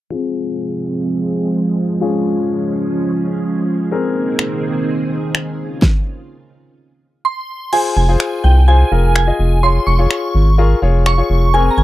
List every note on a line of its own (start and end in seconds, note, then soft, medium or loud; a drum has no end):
0.10 3.88 F3 medium
0.10 3.88 G#3 medium
0.10 1.97 C4 medium
0.10 2.00 C4 medium
0.10 1.98 F4 medium
0.10 2.00 G#4 medium
0.10 1.98 G#4 medium
2.01 3.88 F3 medium
2.01 3.88 C#4 medium
2.01 3.90 C#4 medium
2.01 3.88 F4 medium
2.01 3.90 G#4 medium
2.01 3.88 G#4 medium
3.91 5.57 D#3 medium
3.91 5.80 A#3 medium
3.91 5.55 C4 medium
3.91 5.80 C4 medium
3.91 5.55 G#4 medium
3.91 5.57 G#4 medium
3.91 5.55 A#4 medium
4.39 finger snap loud
5.35 finger snap loud
5.59 5.82 C#3 medium
5.59 5.82 F4 medium
5.82 kick loud
5.82 snare medium
7.25 7.74 C6 medium
7.73 8.02 F4 medium
7.73 8.02 G#4 medium
7.73 8.02 C5 medium
7.73 7.95 G#5 medium
7.73 crash medium
7.97 8.16 F1 loud
7.97 8.46 G#5 medium
8.08 8.57 F4 medium
8.08 8.57 G#4 medium
8.08 8.57 C5 medium
8.20 finger snap loud
8.44 8.84 C2 medium
8.44 8.55 G5 medium
8.68 8.87 F4 medium
8.68 8.87 G#4 medium
8.68 8.87 C5 medium
8.68 9.14 G#5 medium
8.91 9.31 F1 loud
8.91 9.21 F4 medium
8.91 9.21 G#4 medium
8.91 9.21 A#4 medium
9.15 9.65 G#5 medium
9.15 finger snap loud
9.27 9.56 F4 medium
9.27 9.57 G#4 medium
9.27 9.57 D#5 medium
9.39 9.79 F1 medium
9.63 9.92 F4 medium
9.63 9.92 G#4 medium
9.63 9.92 C#5 medium
9.63 9.88 C6 loud
9.87 10.07 F1 loud
9.87 10.54 C#6 medium
9.99 10.47 F4 medium
9.99 10.47 G#4 medium
9.99 10.47 C#5 medium
10.11 finger snap loud
10.35 10.74 G#1 medium
10.58 10.78 F4 medium
10.58 10.78 G#4 medium
10.58 10.78 A#4 medium
10.82 11.22 F1 loud
10.82 11.11 F4 medium
10.82 11.11 G#4 medium
10.82 11.11 C#5 medium
11.06 11.55 C#6 loud
11.06 finger snap loud
11.18 11.47 F4 medium
11.18 11.47 G#4 medium
11.18 11.47 C#5 medium
11.30 11.70 F1 medium
11.54 11.83 C4 medium
11.54 11.83 G#4 medium
11.54 11.83 A#4 medium
11.54 11.71 G#5 medium
11.71 11.78 A#5 medium
11.78 11.84 G#1 loud
11.78 11.84 G#5 medium